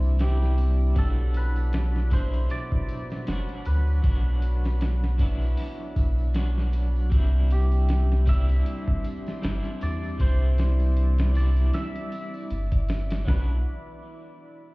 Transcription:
Already playing: C2 G3 C4 D4 E4 C5 D5 B5
0.03 tambourine
0.19 G3 C4 D4 E4 G4, snare, closed hi-hat, tambourine
0.42 snare
0.58 closed hi-hat, tambourine
0.80 tambourine
0.95 B1 F#3 B3 D4 F#4 A4, kick, closed hi-hat, tambourine
0.99 F#4
1.34 B4, closed hi-hat, tambourine
1.56 closed hi-hat, tambourine
1.73 snare, closed hi-hat, tambourine
1.96 snare
2.10 B2 F#3 D4 C5, kick, closed hi-hat, tambourine
2.15 E4
2.33 closed hi-hat, tambourine
2.49 D5, closed hi-hat, tambourine
2.72 kick
2.89 closed hi-hat, tambourine
3.10 snare, tambourine
3.26 F#1 F#3 B3 D4 F#4, snare, closed hi-hat, tambourine
3.49 closed hi-hat
3.65 D2 B4, closed hi-hat, tambourine
3.87 tambourine
4.02 B1 F#3 B3 D4 F#4, kick, closed hi-hat, tambourine
4.42 closed hi-hat, tambourine
4.64 snare, tambourine
4.80 snare, closed hi-hat, tambourine
5.04 snare
5.18 F#3 B3 D4, kick, closed hi-hat, tambourine
5.22 E4
5.41 tambourine
5.57 open hi-hat, tambourine
5.96 B1, kick, closed hi-hat, tambourine
6.18 tambourine
6.34 F#3 B3 D4 F#4, snare, closed hi-hat, tambourine
6.58 snare
6.73 closed hi-hat, tambourine
6.96 tambourine
7.10 C2 G3 C4 D4 E4 D5 C6, kick, closed hi-hat, tambourine
7.51 G4, closed hi-hat, tambourine
7.71 closed hi-hat, tambourine
7.88 snare, closed hi-hat, tambourine
8.12 snare
8.26 G3 C4 D4 E4 E5, kick, closed hi-hat, tambourine
8.49 closed hi-hat, tambourine
8.65 closed hi-hat, tambourine
8.88 kick
9.04 closed hi-hat, tambourine
9.26 snare, tambourine
9.42 G1 G3 C4 D4 E4, snare, closed hi-hat, tambourine
9.65 closed hi-hat
9.81 E2 D5, closed hi-hat, tambourine
10.03 tambourine
10.18 C2 G3 C4 D4 E4 C5 D6, kick, closed hi-hat, tambourine
10.58 snare, closed hi-hat, tambourine
10.80 closed hi-hat, tambourine
10.97 closed hi-hat, tambourine
11.18 snare, closed hi-hat
11.33 G3 C4 D4 E4 D5, closed hi-hat, tambourine
11.56 closed hi-hat, tambourine
11.73 E5, snare, closed hi-hat, tambourine
11.96 closed hi-hat
12.12 closed hi-hat, tambourine
12.34 tambourine
12.50 G1, closed hi-hat, tambourine
12.72 kick, closed hi-hat
12.88 snare, closed hi-hat, tambourine
13.11 snare, closed hi-hat, tambourine
13.25 B1 F#3 B3 B4, kick, snare
13.29 D4 F#4

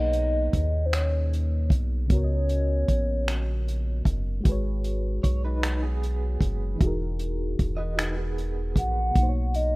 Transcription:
Already playing: B1 B2 A#3 D#4 G#4 B4 C#5 D#5
0.13 closed hi-hat
0.53 D#2, kick, closed hi-hat
0.86 C5
0.93 C#5, finger snap, closed hi-hat
1.33 closed hi-hat
1.70 B1, kick, closed hi-hat
2.06 C#3 B3, kick, closed hi-hat
2.10 C#2 F#4 A#4 C#5
2.18 C#5
2.24 D#5
2.49 closed hi-hat
2.88 A#1, kick, closed hi-hat
3.28 finger snap, closed hi-hat
3.68 closed hi-hat
4.05 F#1, kick, closed hi-hat
4.41 G#3 F#4
4.45 G#1 G#4 B4, kick, closed hi-hat
4.52 C#5
4.84 closed hi-hat
5.23 B1 C#5, kick, closed hi-hat
5.45 D#4 B4
5.63 finger snap, closed hi-hat
5.83 B3 G#4
6.03 closed hi-hat
6.41 F#1, kick, closed hi-hat
6.76 E3 D#4
6.81 E1 F#4 G#4, kick, closed hi-hat
6.87 A#4
7.19 closed hi-hat
7.59 E1, kick, closed hi-hat
7.77 F#4 D#5
7.97 D#4 B4, finger snap, closed hi-hat
8.16 B3 G#4
8.38 closed hi-hat
8.76 A#1 F#5, kick, closed hi-hat
9.11 B2 A#3
9.15 B1 D#4, kick, closed hi-hat
9.23 C5
9.29 C#5
9.54 D#5, closed hi-hat

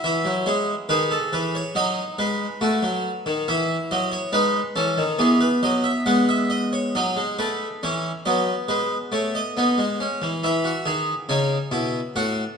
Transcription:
0.04 E3 E4 E5
0.25 F#3
0.46 G#3 C#5
0.89 D#3 G#4 B4
1.11 A4
1.33 E3 B4
1.55 C#5
1.75 F#3 D#4 D#5
2.18 G#3 B4
2.61 A3 F#4
2.83 F#3
3.26 D#3
3.48 E3 E4 E5
3.91 F#3 D#5
4.12 C#5
4.33 G#3 D#4 B4
4.76 E3 C#4 A4
4.97 D#3
5.18 E3 B3 G#4
5.41 B4
5.63 F#3 D#5
5.84 E5
6.06 G#3 B3 F#5
6.29 E5
6.50 D#5
6.73 C#5
6.95 F#3 D#4 D#5
7.16 G#3
7.39 A3 B4
7.83 E3 C#4 C#5
8.26 F#3 B3 D#5
8.68 G#3 B4
9.12 A3 C#5
9.35 D#5
9.57 B3 D#4
9.78 G#3
10.00 C#4
10.22 E3
10.44 E3 E4 E5
10.64 F#4
10.86 D#3 G#4
11.29 C#3 D#4 G#5
11.71 B2 E4
12.16 A2 F#4 F#5

